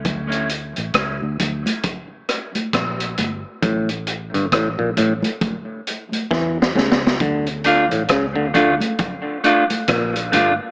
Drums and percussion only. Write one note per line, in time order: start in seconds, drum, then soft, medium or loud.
0.05 kick loud
0.05 closed hi-hat medium
0.05 low conga medium
0.32 closed hi-hat soft
0.49 closed hi-hat medium
0.76 closed hi-hat soft
0.94 kick medium
0.94 cross-stick loud
0.94 closed hi-hat medium
1.39 closed hi-hat medium
1.39 low conga medium
1.66 closed hi-hat medium
1.66 high conga medium
1.83 kick loud
1.83 closed hi-hat medium
1.83 low conga medium
2.29 cross-stick medium
2.29 closed hi-hat medium
2.55 closed hi-hat soft
2.55 high conga medium
2.73 kick loud
2.73 cross-stick loud
2.73 closed hi-hat medium
3.00 closed hi-hat medium
3.17 closed hi-hat medium
3.17 high conga medium
3.62 kick loud
3.62 closed hi-hat medium
3.62 low conga medium
3.89 closed hi-hat soft
4.07 closed hi-hat medium
4.34 closed hi-hat soft
4.52 kick medium
4.52 cross-stick loud
4.52 closed hi-hat medium
4.52 high conga soft
4.97 closed hi-hat medium
4.97 high conga soft
4.97 low conga medium
5.22 closed hi-hat medium
5.22 high conga medium
5.41 kick loud
5.41 closed hi-hat medium
5.41 high conga medium
5.41 low conga medium
5.87 closed hi-hat medium
6.12 closed hi-hat soft
6.12 high conga soft
6.31 kick loud
6.31 snare medium
6.62 snare medium
6.75 snare medium
6.75 high conga medium
6.92 snare medium
7.07 snare medium
7.20 kick loud
7.20 closed hi-hat medium
7.20 low conga medium
7.46 closed hi-hat soft
7.64 closed hi-hat medium
7.91 closed hi-hat soft
8.08 kick medium
8.08 cross-stick loud
8.08 closed hi-hat medium
8.54 closed hi-hat medium
8.54 low conga medium
8.80 closed hi-hat medium
8.80 high conga medium
8.98 kick loud
8.98 closed hi-hat medium
8.98 low conga medium
9.44 closed hi-hat medium
9.70 closed hi-hat medium
9.70 high conga medium
9.88 kick loud
9.88 cross-stick loud
9.88 closed hi-hat medium
10.15 closed hi-hat medium
10.33 closed hi-hat medium
10.33 high conga medium